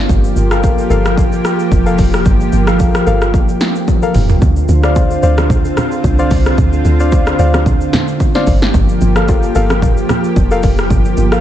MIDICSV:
0, 0, Header, 1, 5, 480
1, 0, Start_track
1, 0, Tempo, 540541
1, 84, Time_signature, 4, 2, 24, 8
1, 10129, End_track
2, 0, Start_track
2, 0, Title_t, "Synth stab"
2, 0, Program_c, 0, 62
2, 453, Note_on_c, 0, 69, 78
2, 455, Note_on_c, 0, 70, 75
2, 458, Note_on_c, 0, 77, 83
2, 776, Note_off_c, 0, 69, 0
2, 778, Note_off_c, 0, 70, 0
2, 779, Note_off_c, 0, 77, 0
2, 800, Note_on_c, 0, 69, 83
2, 804, Note_on_c, 0, 70, 74
2, 806, Note_on_c, 0, 77, 88
2, 1025, Note_off_c, 0, 69, 0
2, 1027, Note_off_c, 0, 70, 0
2, 1028, Note_off_c, 0, 77, 0
2, 1651, Note_on_c, 0, 69, 80
2, 1654, Note_on_c, 0, 70, 77
2, 1656, Note_on_c, 0, 77, 88
2, 1762, Note_off_c, 0, 69, 0
2, 1764, Note_off_c, 0, 70, 0
2, 1765, Note_off_c, 0, 77, 0
2, 2373, Note_on_c, 0, 69, 80
2, 2376, Note_on_c, 0, 70, 72
2, 2379, Note_on_c, 0, 77, 83
2, 2697, Note_off_c, 0, 69, 0
2, 2698, Note_off_c, 0, 70, 0
2, 2699, Note_off_c, 0, 77, 0
2, 2721, Note_on_c, 0, 69, 84
2, 2723, Note_on_c, 0, 70, 74
2, 2727, Note_on_c, 0, 77, 93
2, 2945, Note_off_c, 0, 69, 0
2, 2946, Note_off_c, 0, 70, 0
2, 2948, Note_off_c, 0, 77, 0
2, 3573, Note_on_c, 0, 69, 82
2, 3575, Note_on_c, 0, 70, 77
2, 3578, Note_on_c, 0, 77, 90
2, 3683, Note_off_c, 0, 69, 0
2, 3684, Note_off_c, 0, 70, 0
2, 3686, Note_off_c, 0, 77, 0
2, 4294, Note_on_c, 0, 72, 76
2, 4297, Note_on_c, 0, 74, 70
2, 4300, Note_on_c, 0, 77, 87
2, 4617, Note_off_c, 0, 72, 0
2, 4619, Note_off_c, 0, 74, 0
2, 4620, Note_off_c, 0, 77, 0
2, 4642, Note_on_c, 0, 72, 83
2, 4645, Note_on_c, 0, 74, 76
2, 4647, Note_on_c, 0, 77, 91
2, 4866, Note_off_c, 0, 72, 0
2, 4867, Note_off_c, 0, 74, 0
2, 4868, Note_off_c, 0, 77, 0
2, 5494, Note_on_c, 0, 72, 83
2, 5498, Note_on_c, 0, 74, 80
2, 5500, Note_on_c, 0, 77, 91
2, 5604, Note_off_c, 0, 72, 0
2, 5606, Note_off_c, 0, 74, 0
2, 5607, Note_off_c, 0, 77, 0
2, 6214, Note_on_c, 0, 72, 77
2, 6216, Note_on_c, 0, 74, 70
2, 6219, Note_on_c, 0, 77, 84
2, 6537, Note_off_c, 0, 72, 0
2, 6538, Note_off_c, 0, 74, 0
2, 6540, Note_off_c, 0, 77, 0
2, 6562, Note_on_c, 0, 72, 81
2, 6565, Note_on_c, 0, 74, 75
2, 6567, Note_on_c, 0, 77, 94
2, 6786, Note_off_c, 0, 72, 0
2, 6787, Note_off_c, 0, 74, 0
2, 6788, Note_off_c, 0, 77, 0
2, 7413, Note_on_c, 0, 72, 84
2, 7416, Note_on_c, 0, 74, 78
2, 7419, Note_on_c, 0, 77, 92
2, 7523, Note_off_c, 0, 72, 0
2, 7525, Note_off_c, 0, 74, 0
2, 7526, Note_off_c, 0, 77, 0
2, 8134, Note_on_c, 0, 69, 82
2, 8136, Note_on_c, 0, 70, 71
2, 8139, Note_on_c, 0, 77, 86
2, 8457, Note_off_c, 0, 69, 0
2, 8458, Note_off_c, 0, 70, 0
2, 8460, Note_off_c, 0, 77, 0
2, 8482, Note_on_c, 0, 69, 85
2, 8485, Note_on_c, 0, 70, 75
2, 8487, Note_on_c, 0, 77, 95
2, 8706, Note_off_c, 0, 69, 0
2, 8707, Note_off_c, 0, 70, 0
2, 8708, Note_off_c, 0, 77, 0
2, 9334, Note_on_c, 0, 69, 83
2, 9337, Note_on_c, 0, 70, 73
2, 9339, Note_on_c, 0, 77, 93
2, 9444, Note_off_c, 0, 69, 0
2, 9445, Note_off_c, 0, 70, 0
2, 9446, Note_off_c, 0, 77, 0
2, 10052, Note_on_c, 0, 69, 79
2, 10056, Note_on_c, 0, 70, 73
2, 10058, Note_on_c, 0, 77, 87
2, 10129, Note_off_c, 0, 69, 0
2, 10129, Note_off_c, 0, 70, 0
2, 10129, Note_off_c, 0, 77, 0
2, 10129, End_track
3, 0, Start_track
3, 0, Title_t, "Analog synth pad"
3, 0, Program_c, 1, 89
3, 0, Note_on_c, 1, 53, 86
3, 0, Note_on_c, 1, 58, 77
3, 0, Note_on_c, 1, 67, 89
3, 3888, Note_off_c, 1, 58, 0
3, 3888, Note_off_c, 1, 67, 0
3, 3889, Note_off_c, 1, 53, 0
3, 3925, Note_on_c, 1, 60, 78
3, 3925, Note_on_c, 1, 65, 88
3, 3926, Note_on_c, 1, 50, 81
3, 7489, Note_off_c, 1, 50, 0
3, 7489, Note_off_c, 1, 60, 0
3, 7489, Note_off_c, 1, 65, 0
3, 7525, Note_on_c, 1, 53, 86
3, 7526, Note_on_c, 1, 58, 74
3, 7526, Note_on_c, 1, 67, 88
3, 10129, Note_off_c, 1, 53, 0
3, 10129, Note_off_c, 1, 58, 0
3, 10129, Note_off_c, 1, 67, 0
3, 10129, End_track
4, 0, Start_track
4, 0, Title_t, "Log drum bass"
4, 0, Program_c, 2, 39
4, 83, Note_on_c, 2, 31, 113
4, 297, Note_off_c, 2, 31, 0
4, 322, Note_on_c, 2, 31, 100
4, 750, Note_off_c, 2, 31, 0
4, 802, Note_on_c, 2, 31, 107
4, 1230, Note_off_c, 2, 31, 0
4, 1524, Note_on_c, 2, 29, 102
4, 1738, Note_off_c, 2, 29, 0
4, 1765, Note_on_c, 2, 29, 94
4, 1978, Note_off_c, 2, 29, 0
4, 2005, Note_on_c, 2, 31, 112
4, 2218, Note_off_c, 2, 31, 0
4, 2245, Note_on_c, 2, 31, 100
4, 2672, Note_off_c, 2, 31, 0
4, 2726, Note_on_c, 2, 31, 105
4, 3152, Note_off_c, 2, 31, 0
4, 3685, Note_on_c, 2, 29, 98
4, 3898, Note_off_c, 2, 29, 0
4, 3923, Note_on_c, 2, 38, 121
4, 4137, Note_off_c, 2, 38, 0
4, 4163, Note_on_c, 2, 38, 114
4, 4591, Note_off_c, 2, 38, 0
4, 4644, Note_on_c, 2, 38, 104
4, 5072, Note_off_c, 2, 38, 0
4, 5365, Note_on_c, 2, 36, 99
4, 5578, Note_off_c, 2, 36, 0
4, 5605, Note_on_c, 2, 36, 104
4, 5818, Note_off_c, 2, 36, 0
4, 5843, Note_on_c, 2, 38, 116
4, 6057, Note_off_c, 2, 38, 0
4, 6083, Note_on_c, 2, 38, 109
4, 6511, Note_off_c, 2, 38, 0
4, 6564, Note_on_c, 2, 38, 104
4, 6992, Note_off_c, 2, 38, 0
4, 7523, Note_on_c, 2, 31, 109
4, 7737, Note_off_c, 2, 31, 0
4, 7762, Note_on_c, 2, 31, 108
4, 7977, Note_off_c, 2, 31, 0
4, 8006, Note_on_c, 2, 31, 102
4, 8433, Note_off_c, 2, 31, 0
4, 8487, Note_on_c, 2, 31, 104
4, 8913, Note_off_c, 2, 31, 0
4, 9205, Note_on_c, 2, 29, 97
4, 9418, Note_off_c, 2, 29, 0
4, 9445, Note_on_c, 2, 29, 98
4, 9658, Note_off_c, 2, 29, 0
4, 9684, Note_on_c, 2, 31, 112
4, 9898, Note_off_c, 2, 31, 0
4, 9923, Note_on_c, 2, 31, 101
4, 10129, Note_off_c, 2, 31, 0
4, 10129, End_track
5, 0, Start_track
5, 0, Title_t, "Drums"
5, 84, Note_on_c, 9, 36, 119
5, 85, Note_on_c, 9, 82, 85
5, 172, Note_off_c, 9, 36, 0
5, 174, Note_off_c, 9, 82, 0
5, 214, Note_on_c, 9, 82, 54
5, 303, Note_off_c, 9, 82, 0
5, 324, Note_on_c, 9, 82, 92
5, 412, Note_off_c, 9, 82, 0
5, 454, Note_on_c, 9, 37, 95
5, 455, Note_on_c, 9, 82, 59
5, 543, Note_off_c, 9, 37, 0
5, 544, Note_off_c, 9, 82, 0
5, 564, Note_on_c, 9, 82, 86
5, 565, Note_on_c, 9, 36, 107
5, 652, Note_off_c, 9, 82, 0
5, 654, Note_off_c, 9, 36, 0
5, 695, Note_on_c, 9, 82, 56
5, 784, Note_off_c, 9, 82, 0
5, 805, Note_on_c, 9, 82, 100
5, 894, Note_off_c, 9, 82, 0
5, 937, Note_on_c, 9, 82, 55
5, 938, Note_on_c, 9, 37, 96
5, 1026, Note_off_c, 9, 82, 0
5, 1027, Note_off_c, 9, 37, 0
5, 1044, Note_on_c, 9, 36, 125
5, 1048, Note_on_c, 9, 82, 85
5, 1133, Note_off_c, 9, 36, 0
5, 1137, Note_off_c, 9, 82, 0
5, 1176, Note_on_c, 9, 82, 55
5, 1265, Note_off_c, 9, 82, 0
5, 1285, Note_on_c, 9, 37, 89
5, 1287, Note_on_c, 9, 82, 99
5, 1374, Note_off_c, 9, 37, 0
5, 1375, Note_off_c, 9, 82, 0
5, 1415, Note_on_c, 9, 82, 56
5, 1504, Note_off_c, 9, 82, 0
5, 1524, Note_on_c, 9, 36, 99
5, 1527, Note_on_c, 9, 82, 71
5, 1613, Note_off_c, 9, 36, 0
5, 1615, Note_off_c, 9, 82, 0
5, 1655, Note_on_c, 9, 82, 58
5, 1743, Note_off_c, 9, 82, 0
5, 1762, Note_on_c, 9, 46, 65
5, 1762, Note_on_c, 9, 82, 77
5, 1765, Note_on_c, 9, 36, 99
5, 1851, Note_off_c, 9, 46, 0
5, 1851, Note_off_c, 9, 82, 0
5, 1854, Note_off_c, 9, 36, 0
5, 1896, Note_on_c, 9, 82, 55
5, 1900, Note_on_c, 9, 37, 89
5, 1985, Note_off_c, 9, 82, 0
5, 1989, Note_off_c, 9, 37, 0
5, 2004, Note_on_c, 9, 36, 124
5, 2004, Note_on_c, 9, 82, 87
5, 2092, Note_off_c, 9, 82, 0
5, 2093, Note_off_c, 9, 36, 0
5, 2135, Note_on_c, 9, 82, 54
5, 2224, Note_off_c, 9, 82, 0
5, 2243, Note_on_c, 9, 82, 96
5, 2332, Note_off_c, 9, 82, 0
5, 2374, Note_on_c, 9, 37, 97
5, 2375, Note_on_c, 9, 82, 59
5, 2463, Note_off_c, 9, 37, 0
5, 2464, Note_off_c, 9, 82, 0
5, 2483, Note_on_c, 9, 82, 87
5, 2486, Note_on_c, 9, 36, 108
5, 2571, Note_off_c, 9, 82, 0
5, 2574, Note_off_c, 9, 36, 0
5, 2617, Note_on_c, 9, 82, 57
5, 2618, Note_on_c, 9, 37, 94
5, 2705, Note_off_c, 9, 82, 0
5, 2707, Note_off_c, 9, 37, 0
5, 2726, Note_on_c, 9, 82, 101
5, 2815, Note_off_c, 9, 82, 0
5, 2856, Note_on_c, 9, 82, 54
5, 2857, Note_on_c, 9, 37, 94
5, 2945, Note_off_c, 9, 82, 0
5, 2946, Note_off_c, 9, 37, 0
5, 2964, Note_on_c, 9, 36, 119
5, 2968, Note_on_c, 9, 82, 90
5, 3053, Note_off_c, 9, 36, 0
5, 3057, Note_off_c, 9, 82, 0
5, 3096, Note_on_c, 9, 82, 54
5, 3185, Note_off_c, 9, 82, 0
5, 3204, Note_on_c, 9, 38, 64
5, 3205, Note_on_c, 9, 82, 98
5, 3293, Note_off_c, 9, 38, 0
5, 3294, Note_off_c, 9, 82, 0
5, 3334, Note_on_c, 9, 82, 56
5, 3423, Note_off_c, 9, 82, 0
5, 3444, Note_on_c, 9, 36, 105
5, 3444, Note_on_c, 9, 48, 62
5, 3447, Note_on_c, 9, 82, 72
5, 3533, Note_off_c, 9, 36, 0
5, 3533, Note_off_c, 9, 48, 0
5, 3535, Note_off_c, 9, 82, 0
5, 3574, Note_on_c, 9, 82, 59
5, 3662, Note_off_c, 9, 82, 0
5, 3680, Note_on_c, 9, 46, 63
5, 3680, Note_on_c, 9, 82, 76
5, 3683, Note_on_c, 9, 45, 105
5, 3769, Note_off_c, 9, 46, 0
5, 3769, Note_off_c, 9, 82, 0
5, 3772, Note_off_c, 9, 45, 0
5, 3813, Note_on_c, 9, 82, 54
5, 3815, Note_on_c, 9, 43, 100
5, 3902, Note_off_c, 9, 82, 0
5, 3903, Note_off_c, 9, 43, 0
5, 3922, Note_on_c, 9, 82, 81
5, 3924, Note_on_c, 9, 36, 115
5, 3924, Note_on_c, 9, 64, 66
5, 4011, Note_off_c, 9, 82, 0
5, 4012, Note_off_c, 9, 36, 0
5, 4013, Note_off_c, 9, 64, 0
5, 4052, Note_on_c, 9, 82, 56
5, 4141, Note_off_c, 9, 82, 0
5, 4162, Note_on_c, 9, 82, 97
5, 4163, Note_on_c, 9, 61, 56
5, 4250, Note_off_c, 9, 82, 0
5, 4252, Note_off_c, 9, 61, 0
5, 4293, Note_on_c, 9, 37, 98
5, 4294, Note_on_c, 9, 82, 59
5, 4382, Note_off_c, 9, 37, 0
5, 4383, Note_off_c, 9, 82, 0
5, 4403, Note_on_c, 9, 82, 84
5, 4405, Note_on_c, 9, 36, 109
5, 4405, Note_on_c, 9, 60, 82
5, 4492, Note_off_c, 9, 82, 0
5, 4494, Note_off_c, 9, 36, 0
5, 4494, Note_off_c, 9, 60, 0
5, 4534, Note_on_c, 9, 82, 55
5, 4623, Note_off_c, 9, 82, 0
5, 4643, Note_on_c, 9, 60, 58
5, 4644, Note_on_c, 9, 82, 99
5, 4732, Note_off_c, 9, 60, 0
5, 4733, Note_off_c, 9, 82, 0
5, 4775, Note_on_c, 9, 82, 55
5, 4776, Note_on_c, 9, 37, 98
5, 4777, Note_on_c, 9, 61, 87
5, 4864, Note_off_c, 9, 82, 0
5, 4865, Note_off_c, 9, 37, 0
5, 4866, Note_off_c, 9, 61, 0
5, 4882, Note_on_c, 9, 64, 73
5, 4884, Note_on_c, 9, 36, 125
5, 4888, Note_on_c, 9, 82, 87
5, 4971, Note_off_c, 9, 64, 0
5, 4973, Note_off_c, 9, 36, 0
5, 4977, Note_off_c, 9, 82, 0
5, 5017, Note_on_c, 9, 82, 58
5, 5105, Note_off_c, 9, 82, 0
5, 5125, Note_on_c, 9, 37, 91
5, 5126, Note_on_c, 9, 82, 100
5, 5129, Note_on_c, 9, 61, 73
5, 5129, Note_on_c, 9, 64, 76
5, 5213, Note_off_c, 9, 37, 0
5, 5215, Note_off_c, 9, 82, 0
5, 5218, Note_off_c, 9, 61, 0
5, 5218, Note_off_c, 9, 64, 0
5, 5254, Note_on_c, 9, 82, 56
5, 5343, Note_off_c, 9, 82, 0
5, 5365, Note_on_c, 9, 36, 100
5, 5365, Note_on_c, 9, 60, 77
5, 5367, Note_on_c, 9, 82, 71
5, 5454, Note_off_c, 9, 36, 0
5, 5454, Note_off_c, 9, 60, 0
5, 5456, Note_off_c, 9, 82, 0
5, 5495, Note_on_c, 9, 82, 56
5, 5584, Note_off_c, 9, 82, 0
5, 5601, Note_on_c, 9, 46, 66
5, 5601, Note_on_c, 9, 82, 77
5, 5605, Note_on_c, 9, 36, 101
5, 5690, Note_off_c, 9, 46, 0
5, 5690, Note_off_c, 9, 82, 0
5, 5694, Note_off_c, 9, 36, 0
5, 5735, Note_on_c, 9, 82, 56
5, 5739, Note_on_c, 9, 37, 88
5, 5824, Note_off_c, 9, 82, 0
5, 5828, Note_off_c, 9, 37, 0
5, 5844, Note_on_c, 9, 36, 121
5, 5844, Note_on_c, 9, 64, 69
5, 5844, Note_on_c, 9, 82, 81
5, 5932, Note_off_c, 9, 82, 0
5, 5933, Note_off_c, 9, 36, 0
5, 5933, Note_off_c, 9, 64, 0
5, 5974, Note_on_c, 9, 82, 52
5, 6063, Note_off_c, 9, 82, 0
5, 6083, Note_on_c, 9, 61, 57
5, 6083, Note_on_c, 9, 82, 92
5, 6171, Note_off_c, 9, 61, 0
5, 6172, Note_off_c, 9, 82, 0
5, 6215, Note_on_c, 9, 82, 59
5, 6303, Note_off_c, 9, 82, 0
5, 6324, Note_on_c, 9, 82, 87
5, 6325, Note_on_c, 9, 36, 110
5, 6325, Note_on_c, 9, 60, 82
5, 6412, Note_off_c, 9, 82, 0
5, 6414, Note_off_c, 9, 36, 0
5, 6414, Note_off_c, 9, 60, 0
5, 6454, Note_on_c, 9, 82, 54
5, 6456, Note_on_c, 9, 37, 94
5, 6543, Note_off_c, 9, 82, 0
5, 6544, Note_off_c, 9, 37, 0
5, 6563, Note_on_c, 9, 60, 60
5, 6564, Note_on_c, 9, 82, 99
5, 6652, Note_off_c, 9, 60, 0
5, 6653, Note_off_c, 9, 82, 0
5, 6694, Note_on_c, 9, 82, 52
5, 6696, Note_on_c, 9, 37, 94
5, 6699, Note_on_c, 9, 61, 86
5, 6783, Note_off_c, 9, 82, 0
5, 6784, Note_off_c, 9, 37, 0
5, 6788, Note_off_c, 9, 61, 0
5, 6801, Note_on_c, 9, 64, 72
5, 6803, Note_on_c, 9, 36, 125
5, 6805, Note_on_c, 9, 82, 87
5, 6890, Note_off_c, 9, 64, 0
5, 6892, Note_off_c, 9, 36, 0
5, 6894, Note_off_c, 9, 82, 0
5, 6935, Note_on_c, 9, 82, 56
5, 7023, Note_off_c, 9, 82, 0
5, 7044, Note_on_c, 9, 38, 66
5, 7045, Note_on_c, 9, 82, 96
5, 7048, Note_on_c, 9, 61, 79
5, 7048, Note_on_c, 9, 64, 74
5, 7132, Note_off_c, 9, 38, 0
5, 7133, Note_off_c, 9, 82, 0
5, 7137, Note_off_c, 9, 61, 0
5, 7137, Note_off_c, 9, 64, 0
5, 7174, Note_on_c, 9, 82, 56
5, 7263, Note_off_c, 9, 82, 0
5, 7283, Note_on_c, 9, 60, 76
5, 7284, Note_on_c, 9, 36, 100
5, 7284, Note_on_c, 9, 82, 72
5, 7371, Note_off_c, 9, 60, 0
5, 7372, Note_off_c, 9, 36, 0
5, 7373, Note_off_c, 9, 82, 0
5, 7412, Note_on_c, 9, 82, 55
5, 7417, Note_on_c, 9, 38, 62
5, 7501, Note_off_c, 9, 82, 0
5, 7505, Note_off_c, 9, 38, 0
5, 7519, Note_on_c, 9, 46, 65
5, 7519, Note_on_c, 9, 82, 80
5, 7524, Note_on_c, 9, 36, 100
5, 7608, Note_off_c, 9, 46, 0
5, 7608, Note_off_c, 9, 82, 0
5, 7613, Note_off_c, 9, 36, 0
5, 7653, Note_on_c, 9, 82, 56
5, 7657, Note_on_c, 9, 38, 63
5, 7741, Note_off_c, 9, 82, 0
5, 7746, Note_off_c, 9, 38, 0
5, 7762, Note_on_c, 9, 82, 80
5, 7763, Note_on_c, 9, 36, 115
5, 7765, Note_on_c, 9, 64, 66
5, 7851, Note_off_c, 9, 82, 0
5, 7852, Note_off_c, 9, 36, 0
5, 7854, Note_off_c, 9, 64, 0
5, 7893, Note_on_c, 9, 82, 53
5, 7982, Note_off_c, 9, 82, 0
5, 8002, Note_on_c, 9, 82, 94
5, 8004, Note_on_c, 9, 61, 57
5, 8091, Note_off_c, 9, 82, 0
5, 8093, Note_off_c, 9, 61, 0
5, 8132, Note_on_c, 9, 37, 95
5, 8133, Note_on_c, 9, 82, 58
5, 8221, Note_off_c, 9, 37, 0
5, 8222, Note_off_c, 9, 82, 0
5, 8242, Note_on_c, 9, 82, 86
5, 8245, Note_on_c, 9, 36, 106
5, 8247, Note_on_c, 9, 60, 81
5, 8331, Note_off_c, 9, 82, 0
5, 8334, Note_off_c, 9, 36, 0
5, 8336, Note_off_c, 9, 60, 0
5, 8373, Note_on_c, 9, 82, 57
5, 8462, Note_off_c, 9, 82, 0
5, 8483, Note_on_c, 9, 82, 100
5, 8484, Note_on_c, 9, 60, 58
5, 8572, Note_off_c, 9, 82, 0
5, 8573, Note_off_c, 9, 60, 0
5, 8614, Note_on_c, 9, 82, 53
5, 8616, Note_on_c, 9, 37, 93
5, 8617, Note_on_c, 9, 61, 86
5, 8703, Note_off_c, 9, 82, 0
5, 8704, Note_off_c, 9, 37, 0
5, 8706, Note_off_c, 9, 61, 0
5, 8720, Note_on_c, 9, 64, 73
5, 8724, Note_on_c, 9, 36, 120
5, 8727, Note_on_c, 9, 82, 90
5, 8809, Note_off_c, 9, 64, 0
5, 8812, Note_off_c, 9, 36, 0
5, 8816, Note_off_c, 9, 82, 0
5, 8855, Note_on_c, 9, 82, 56
5, 8944, Note_off_c, 9, 82, 0
5, 8963, Note_on_c, 9, 37, 89
5, 8964, Note_on_c, 9, 82, 97
5, 8967, Note_on_c, 9, 61, 76
5, 8967, Note_on_c, 9, 64, 77
5, 9052, Note_off_c, 9, 37, 0
5, 9053, Note_off_c, 9, 82, 0
5, 9056, Note_off_c, 9, 61, 0
5, 9056, Note_off_c, 9, 64, 0
5, 9094, Note_on_c, 9, 82, 55
5, 9182, Note_off_c, 9, 82, 0
5, 9201, Note_on_c, 9, 60, 80
5, 9204, Note_on_c, 9, 36, 101
5, 9206, Note_on_c, 9, 82, 73
5, 9290, Note_off_c, 9, 60, 0
5, 9293, Note_off_c, 9, 36, 0
5, 9294, Note_off_c, 9, 82, 0
5, 9333, Note_on_c, 9, 82, 59
5, 9422, Note_off_c, 9, 82, 0
5, 9441, Note_on_c, 9, 46, 66
5, 9441, Note_on_c, 9, 82, 84
5, 9444, Note_on_c, 9, 36, 97
5, 9530, Note_off_c, 9, 46, 0
5, 9530, Note_off_c, 9, 82, 0
5, 9533, Note_off_c, 9, 36, 0
5, 9575, Note_on_c, 9, 82, 58
5, 9580, Note_on_c, 9, 37, 93
5, 9664, Note_off_c, 9, 82, 0
5, 9668, Note_off_c, 9, 37, 0
5, 9682, Note_on_c, 9, 64, 64
5, 9684, Note_on_c, 9, 36, 113
5, 9684, Note_on_c, 9, 82, 78
5, 9771, Note_off_c, 9, 64, 0
5, 9773, Note_off_c, 9, 36, 0
5, 9773, Note_off_c, 9, 82, 0
5, 9813, Note_on_c, 9, 82, 53
5, 9902, Note_off_c, 9, 82, 0
5, 9921, Note_on_c, 9, 82, 99
5, 9923, Note_on_c, 9, 61, 54
5, 10010, Note_off_c, 9, 82, 0
5, 10011, Note_off_c, 9, 61, 0
5, 10052, Note_on_c, 9, 37, 96
5, 10053, Note_on_c, 9, 82, 57
5, 10129, Note_off_c, 9, 37, 0
5, 10129, Note_off_c, 9, 82, 0
5, 10129, End_track
0, 0, End_of_file